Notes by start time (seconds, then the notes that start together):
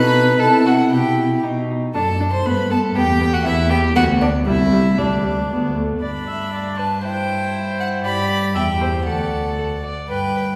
Already playing: B2 D#4 B4 B5
0.40 C3 E4 A4 A5
0.66 F#4 F#5
0.91 B2 E4 G4 G5
1.43 B2 D#4
1.94 F#2 D4 A4 A5
2.20 D4
2.33 C5 C6
2.45 G2 B3 B4 B5
2.70 B3 A4 A5
2.95 E2 B3 G4 G5
3.20 B3
3.33 F#4 F#5
3.45 E2 B3 E4 E5
3.70 B3 G4 G5
3.95 D2 B3 F#4 F#5
4.21 B3 D4 D5
4.46 C2 G3 E4 E5
4.72 G3
4.98 D2 G3 D4 D5
5.23 G3
5.50 D2 B3
5.76 A3
6.02 G2 D4 D5 B5
6.27 E5
6.53 D5
6.79 B4 A5
7.04 E4 C5 G5
7.80 F#5
8.04 G2 G4 D5 B5
8.55 E2 G4 E5 G5
8.80 C5
9.05 D2 A4 D5 F#5
9.58 A4
9.84 D5
10.10 G2 B4 G5
10.36 B4